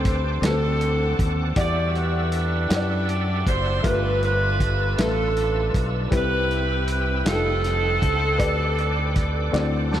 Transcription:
Already playing: D2 D3 A3 C4 D4 G4 C5 G5 A5 D6
0.05 C5, kick, snare, closed hi-hat
0.42 D2 D3 A3 C4 D4 F#4 A4 B4 F#5 A5, snare, clap, closed hi-hat
0.50 C5
0.81 closed hi-hat
1.19 D#2, kick, closed hi-hat
1.56 E2 E3 G3 E4 F#4 G4 D5 E5 F#5 E6, kick, closed hi-hat
1.95 B4, closed hi-hat
2.32 D4 G4 B4, closed hi-hat
2.69 F#2 E4 G4 C#5 F#5, snare, clap, closed hi-hat
2.76 D5
3.09 D5, closed hi-hat
3.47 F#1 C5, kick, closed hi-hat
3.83 G1 G2 A3 D4 F4 A#4 B4 E5 A5, kick, closed hi-hat
3.91 B4
4.22 D4 F4 B4, closed hi-hat
4.60 kick, closed hi-hat
4.98 A1 A3 D4 F4 B4 E5, snare, clap, closed hi-hat
5.02 A4
5.36 closed hi-hat
5.74 B1, kick, closed hi-hat
6.11 C2 C3 G3 C4 E4 B4 G5 B5, kick, closed hi-hat
6.15 E4 G4 B4
6.51 closed hi-hat
6.88 B4, closed hi-hat
7.25 F1 G3 C4 D#4 F4 G4 A4 F5 D#6, snare, clap, closed hi-hat
7.33 A4
7.64 snare, closed hi-hat
8.02 C#2, kick, closed hi-hat
8.38 D2 G4 B4 D5 G5 D6, kick, closed hi-hat
8.78 closed hi-hat
9.16 kick, snare, closed hi-hat
9.51 D2 D3 E3 C4 F#4 C5 D5 F#5, snare, clap
9.91 A5, snare

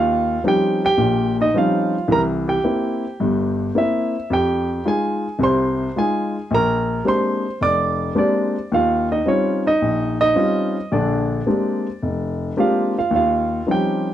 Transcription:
Already playing: D#2 F4 F5
0.44 F3 G3 C4 C#4 D#4 G4
0.48 G5
0.85 G4 G5
0.97 A#1 A#2
1.41 D#4 D#5
1.54 F3 G3 C4 C#4 D#4 F4 F5
2.08 C2 E3 A#4
2.12 A#5
2.48 G4 G5
2.64 A#3 C4 E4
3.20 G1 G2
3.75 A#3 C4 E4 E5
4.30 F2 G4 G5
4.85 G#3 D#4 F4 G#4 G#5
5.39 C2 C3
5.43 C5 C6
5.96 G#3 D#4 F4 G#4 G#5
6.51 A#1 A#4 A#5
7.05 G#3 A#3 C4 D4 G4 C5 C6
7.61 F1 D5 D6
8.15 G#3 A#3 C4 D4 G4 D5
8.72 D#2 F4 F5
9.12 D#4 D#5
9.26 G3 C4 C#4 D#4 F4 C#5
9.67 D#4 D#5
9.82 A#1
10.21 D#4 D#5
10.36 G3 C4 C#4 D#4 F4
10.92 A#1 D3 D4 D5
11.47 G#3 A#3 C4 D4 G4
12.03 F1
12.57 G#3 A#3 C4 D4 F4 G4 F5
12.99 F4 F5
13.11 D#2
13.15 F4 F5
13.66 F3 G3 C4 C#4 D#4
13.71 G4 G5

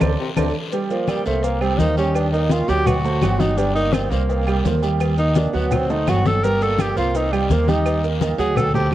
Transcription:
0.00 D2 A4 C5 D5, cowbell, high conga, high timbale, long guiro, claves, maracas
0.19 C3
0.36 D2 D3 A4 C5 D5, cowbell, high conga, high timbale, long guiro, claves, maracas
0.72 G3 G4 G5, cowbell, high conga, low agogo, long guiro, maracas
0.90 F3 A#3 A#4 D5, high conga, maracas
1.07 G3, cowbell, high conga, low agogo, short guiro, claves, maracas
1.25 C2 A3 A#3 A#4 C5, cowbell, high conga, short guiro, maracas
1.43 A#3, cowbell, high conga, low agogo, long guiro, maracas
1.61 G3 C4 G4 G5, cowbell, high conga, low agogo, claves, maracas
1.78 D#2 A#3 D#4 A#4 C5, cowbell, high conga, short guiro, maracas
1.97 G3 C#4 G4 G5, low agogo, short guiro, maracas
2.14 D4, cowbell, high conga, low agogo, long guiro, claves, maracas
2.32 A#3 D#4 A#4 D#5, high conga, maracas
2.49 A#3 F4 A#4 D#5, cowbell, high conga, low agogo, short guiro, maracas
2.68 D2 F#3 F#4 G4 F#5, cowbell, high conga, low agogo, short guiro, maracas
2.86 F#4, cowbell, high conga, low conga, low agogo, long guiro, claves, maracas
3.04 A3 A4 C5, high conga, maracas
3.21 G1 F#3 F#4 F#5, cowbell, high conga, low timbale, low agogo, short guiro, claves, maracas
3.40 D#4, cowbell, high conga, low agogo, short guiro, maracas
3.57 G3 D4 G4 G5, cowbell, high conga, low agogo, long guiro, maracas
3.75 A#3 D#4 A#4 D5, high conga, maracas
3.93 C4, cowbell, high conga, low agogo, short guiro, claves, maracas
4.11 C2 A#3 A#4 C5, cowbell, high conga, short guiro, maracas
4.29 cowbell, high conga, low agogo, long guiro, maracas
4.47 G3 G4 G5, cowbell, high conga, low agogo, claves, maracas
4.64 D#2 A#3 A#4 C5, cowbell, high conga, low timbale, short guiro, maracas
4.83 G3 G4 G5, low agogo, short guiro, maracas
5.00 cowbell, high conga, low agogo, long guiro, claves, maracas
5.18 A#3 D#4 A#4 D#5, high conga, maracas
5.35 A#3 D4 A#4 D#5, cowbell, high bongo, high conga, low agogo, short guiro, maracas
5.53 D2 F#3 B3 F#4 F#5, cowbell, low agogo, short guiro, maracas
5.71 C4, cowbell, high bongo, high conga, low conga, low agogo, long guiro, claves, maracas
5.89 A3 D#4 A4 C5, low bongo, maracas
6.07 G1 F#3 F#4 F#5, cowbell, low bongo, high conga, low timbale, low agogo, short guiro, claves, maracas
6.25 A4, cowbell, low bongo, high conga, low agogo, short guiro, maracas
6.43 G3 G4 A#4 G5, cowbell, high conga, low agogo, long guiro, maracas
6.61 A#3 A4 A#4 D5, high conga, maracas
6.78 G4, cowbell, high conga, low agogo, short guiro, claves, maracas
6.96 C2 A#3 F4 A#4 C5, cowbell, high conga, short guiro, maracas
7.14 D#4, cowbell, high conga, low agogo, long guiro, maracas
7.32 G3 G4 G5, cowbell, high conga, low agogo, claves, maracas
7.50 D#2 A#3 A#4 C5, cowbell, high conga, short guiro, maracas
7.67 G3 D#4 G4 G5, high conga, low agogo, short guiro, maracas
7.85 cowbell, low agogo, long guiro, claves, maracas
8.03 A#3 A#4 D#5, high conga, maracas
8.21 A#3 A#4 D#5, cowbell, high conga, low agogo, short guiro, maracas
8.38 D2 F#3 F#4 G#4 F#5, cowbell, high conga, low agogo, short guiro, maracas
8.56 A4, cowbell, high conga, low conga, low agogo, long guiro, claves, maracas
8.74 A3 G4 A4 C5, high conga, low conga, maracas
8.91 G1

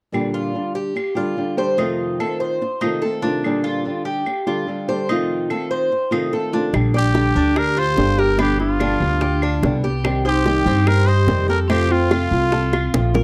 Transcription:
0.12 A#2 D3 G3 D4 G4, claves
0.34 F4
0.54 D3 G3 D4 G4
0.75 G4
0.96 muted nylon-string guitar stroke, claves
1.15 D3 G3 D4 F4 G4
1.36 D3 G3 D4 G4
1.57 D3 G3 D4 G4 C5
1.77 F2 C3 D#3 A3 C4 D#4 F4, claves
2.20 D#3 A3 C4 F4 A4, claves
2.40 C5
2.61 muted nylon-string guitar stroke
2.81 C3 D#3 A3 C4 D#4 F4, claves
3.02 D#3 A3 C4 F4 A4
3.22 C3 D#3 A3 C4 D4 F4
3.44 A#2 D3 G3 D4 G4, claves
3.64 F4
3.85 D3 G3 D4 G4
4.05 G4
4.26 muted nylon-string guitar stroke, claves
4.47 D3 G3 D4 F4 G4
4.67 D3 G3 D4 G4
4.88 D3 G3 D4 G4 C5
5.09 F2 C3 D#3 A3 C4 D#4 F4, claves
5.50 D#3 A3 C4 F4 A4, claves
5.71 C5
5.92 muted nylon-string guitar stroke
6.11 C3 D#3 A3 C4 D#4 F4, claves
6.32 D#3 A3 C4 F4 A4
6.52 C3 D#3 A3 C4 D4 F4
6.73 A#1 D3 G3 D4 G4, high bongo, claves
6.94 G3 D4 G4 D5, high bongo
7.14 D3 G3 D4 G4, high bongo
7.35 D2 G3 D4 G4
7.56 G4 A#4, muted nylon-string guitar stroke, high bongo, claves
7.77 F4 G4 C5, high bongo
7.96 G1 D3 G3 D4 G4, high bongo, low bongo
8.17 G3 D4 G4 A#4, high bongo
8.37 B2 D3 G3 B3 D4 G4, high bongo, claves
8.59 G3 B3 D4 F4 G4, high bongo
8.80 B2 D3 G3 B3 D4 G4, high bongo, claves
9.00 D2 G3 B3 G4
9.21 G4, muted nylon-string guitar stroke, high bongo
9.42 D4, high bongo, claves
9.62 C2 B2 D3 G3 B3 G4, high bongo, low bongo
9.83 G3 B3 G4, high bongo
10.04 C3 D#3 G3 C4 G4, high bongo, claves
10.25 G3 C4 D#4 G4 C5, high bongo
10.45 C3 D#3 G3 C4 G4, high bongo
10.66 G2 G3 C4 G4
10.87 G4 A#4, muted nylon-string guitar stroke, high bongo, claves
11.06 D#4 G4 C5, high bongo
11.27 F2 C3 D#3 G3 C4 G4, high bongo, low bongo
11.48 G3 C4 G4 A4 A#4, high bongo
11.68 C3 F3 A3 C4 F4 G4, high bongo, claves
11.89 A3 C4 F4, high bongo
12.11 C3 F3 A3 C4 F4, high bongo, claves
12.31 C2 A3 C4 F4
12.52 A4, muted nylon-string guitar stroke, high bongo
12.73 F4, high bongo, claves
12.94 A#1 C3 F3 A3 C4 F4, low bongo
13.14 A3 C4 F4 A#4, low bongo

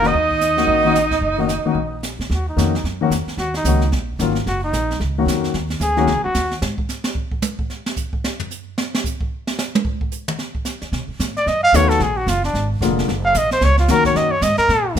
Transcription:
Already playing: F1
0.02 D#3 A#3 C#4 F#4, snare
0.06 D#4 D#5
0.14 D#2, brush sweep
0.30 kick
0.41 snare, hi-hat pedal
0.57 D#3 A#3 C#4 F#4, snare
0.67 A#1, brush sweep
0.85 D#3 A#3 C#4 F#4
0.95 snare, hi-hat pedal
1.11 kick, snare
1.21 F#1, brush sweep
1.38 D#3 A#3 C#4 F#4
1.49 snare, hi-hat pedal
1.65 D#3 A#3 C#4 F#4, muted upright bass stroke
1.75 A#1, brush sweep
2.03 snare, hi-hat pedal
2.19 A#2, snare
2.30 D#2 F#4, brush sweep, snare
2.49 D#4
2.57 F2 D#3 F#3 A#3 C#4 F#4, snare, hi-hat pedal
2.75 snare
2.84 F#2, brush sweep, snare
3.01 D#3 F#3 A#3 C#4 F#4
3.10 F2, snare, hi-hat pedal
3.27 muted upright bass stroke, snare
3.37 D#2 F#4, brush sweep, snare
3.54 D#4, snare
3.64 C#2 D#3 F#3 A#3 C#4 F#4, snare, hi-hat pedal
3.81 snare
3.92 A#1, brush sweep, snare
4.19 G#1 D#3 F#3 A#3 C#4 F4, snare, hi-hat pedal
4.35 snare
4.46 F#1 F#4, brush sweep, snare
4.64 D#4
4.73 A#1, snare, hi-hat pedal
4.91 snare
5.00 C#2, brush sweep, snare
5.18 D#3 F#3 A#3 C#4 F#4
5.26 F2, snare, hi-hat pedal
5.44 snare
5.54 D#2, brush sweep, snare
5.70 snare
5.80 D2 G#4, snare, hi-hat pedal
5.97 D#3 F#3 A#3 C#4 F#4, snare
6.07 C#2, brush sweep, snare
6.17 A#1
6.24 F#1 F#4
6.35 D#2, snare, hi-hat pedal
6.51 snare
6.62 G#2, snare
6.78 kick
6.89 snare, hi-hat pedal
7.04 snare
7.15 kick
7.32 kick
7.42 hi-hat pedal, high tom
7.59 kick
7.70 snare
7.86 snare
7.96 kick, hi-hat pedal
8.13 kick
8.24 snare
8.40 floor tom
8.51 hi-hat pedal
8.78 snare
8.95 snare
9.04 kick, hi-hat pedal
9.21 kick
9.47 snare
9.59 snare, hi-hat pedal
9.75 high tom
9.85 kick
10.01 kick
10.12 hi-hat pedal
10.28 mid tom
10.39 snare
10.55 kick
10.65 snare, hi-hat pedal
10.82 muted upright bass stroke, snare
10.92 B2, brush sweep, snare
11.08 muted upright bass stroke
11.20 A2, snare, hi-hat pedal
11.37 D5, snare
11.46 F#2 D#5, brush sweep, snare
11.63 F5
11.73 D#2 D#3 F#3 A3 B3 F#4 C#5, snare, hi-hat pedal
11.89 A4, snare
12.00 A#1 G#4, brush sweep, snare
12.17 F#4
12.27 F#1 F4, snare, hi-hat pedal
12.44 D4, snare
12.54 G#1, brush sweep, snare
12.81 F1 D3 F3 G#3 A#3 F4, snare, hi-hat pedal
12.99 snare
13.08 F#1, brush sweep, snare
13.25 F5
13.34 A#1 D#5, snare, hi-hat pedal
13.51 C5, snare
13.61 C#2 C#5, brush sweep, snare
13.78 F4, snare
13.88 D#2 D#3 F#3 A#3 C#4 F#4 A#4, snare, hi-hat pedal
14.05 C#5, kick, snare
14.15 F#2 D#5, brush sweep, snare
14.31 C#5
14.41 G#2 D#5, snare, hi-hat pedal
14.58 A#4, muted upright bass stroke, snare
14.69 A#2, brush sweep, snare
14.95 F#2 D#3

